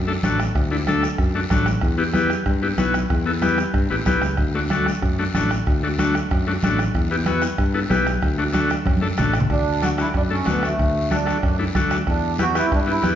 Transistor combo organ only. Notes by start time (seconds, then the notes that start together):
0.07 A3 D4 A4
0.23 A3 D4 F#4
0.71 A3 D4 E4
0.88 A3 D4 A4
1.35 A3 D4 F#4
1.51 A3 D4 F#4
1.98 B3 E4 G4
2.14 B3 E4 G4
2.62 B3 E4 G4
2.78 B3 E4 F#4
3.26 B3 E4 A4
3.41 B3 E4 G4
3.90 B3 E4 G4
4.06 B3 E4 G4
4.55 A3 D4 F#4
4.71 A3 D4 F#4
5.19 A3 D4 F#4
5.34 A3 D4 F#4
5.83 A3 D4 F#4
5.99 A3 D4 F#4
6.47 A3 D4 F#4
6.64 A3 D4 F#4
7.11 B3 E4 G4
7.26 B3 E4 F#4
7.74 B3 E4 A4
7.89 B3 E4 G4
8.38 A3 D4 F#4
8.53 A3 D4 F#4
9.01 A3 D4 A4
9.17 A3 D4 F#4
9.82 A3 D4 F#4
9.98 A3 D4 F#4
10.30 A3 D4 A4
10.45 A3 D4 F#4
11.11 A3 D4 F#4
11.26 A3 D4 F#4
11.59 A3 D4 E4
11.75 A3 D4 F#4
12.39 B3 E4 G4
12.55 B3 E4 G4
12.86 B3 E4 G4
13.02 B3 E4 G4